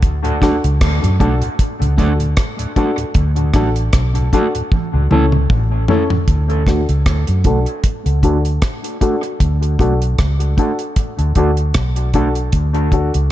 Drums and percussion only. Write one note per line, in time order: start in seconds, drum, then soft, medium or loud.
0.02 kick loud
0.02 closed hi-hat medium
0.25 closed hi-hat soft
0.42 kick medium
0.42 cross-stick medium
0.42 closed hi-hat medium
0.64 closed hi-hat medium
0.81 kick loud
0.81 cross-stick loud
0.81 closed hi-hat medium
1.04 closed hi-hat medium
1.20 kick medium
1.20 closed hi-hat medium
1.42 closed hi-hat soft
1.59 kick loud
1.59 closed hi-hat medium
1.82 closed hi-hat soft
1.98 kick medium
1.98 closed hi-hat medium
2.20 closed hi-hat soft
2.37 kick loud
2.37 cross-stick loud
2.37 closed hi-hat loud
2.59 closed hi-hat medium
2.76 kick medium
2.76 closed hi-hat medium
2.98 closed hi-hat soft
3.14 kick loud
3.14 closed hi-hat medium
3.36 closed hi-hat soft
3.54 kick medium
3.54 cross-stick medium
3.54 closed hi-hat medium
3.76 closed hi-hat medium
3.93 kick loud
3.93 cross-stick loud
3.93 closed hi-hat loud
4.15 closed hi-hat medium
4.33 kick medium
4.33 closed hi-hat medium
4.55 closed hi-hat soft
4.72 kick loud
4.72 high tom medium
5.11 mid tom medium
5.32 mid tom medium
5.50 kick loud
5.50 mid tom medium
5.88 floor tom medium
6.10 floor tom medium
6.28 kick loud
6.28 closed hi-hat medium
6.50 closed hi-hat soft
6.67 kick medium
6.67 cross-stick medium
6.67 closed hi-hat medium
6.89 closed hi-hat soft
7.06 kick loud
7.06 cross-stick loud
7.06 closed hi-hat loud
7.27 closed hi-hat medium
7.44 kick medium
7.44 closed hi-hat medium
7.66 closed hi-hat soft
7.84 kick loud
7.84 closed hi-hat medium
8.06 closed hi-hat soft
8.23 kick medium
8.23 closed hi-hat medium
8.45 closed hi-hat soft
8.62 kick loud
8.62 cross-stick loud
8.62 closed hi-hat medium
8.84 closed hi-hat medium
9.01 kick medium
9.01 closed hi-hat medium
9.23 closed hi-hat soft
9.40 kick medium
9.40 closed hi-hat medium
9.62 closed hi-hat soft
9.79 kick medium
9.79 closed hi-hat medium
10.02 closed hi-hat soft
10.18 kick loud
10.18 cross-stick loud
10.18 closed hi-hat loud
10.40 closed hi-hat medium
10.58 kick medium
10.58 closed hi-hat medium
10.79 closed hi-hat soft
10.96 kick loud
10.96 closed hi-hat medium
11.19 closed hi-hat soft
11.35 kick medium
11.35 closed hi-hat medium
11.57 closed hi-hat soft
11.74 kick loud
11.74 cross-stick loud
11.74 closed hi-hat medium
11.96 closed hi-hat medium
12.14 kick medium
12.14 closed hi-hat medium
12.35 closed hi-hat soft
12.52 kick loud
12.52 closed hi-hat medium
12.74 closed hi-hat soft
12.92 kick medium
12.92 closed hi-hat medium
13.14 closed hi-hat medium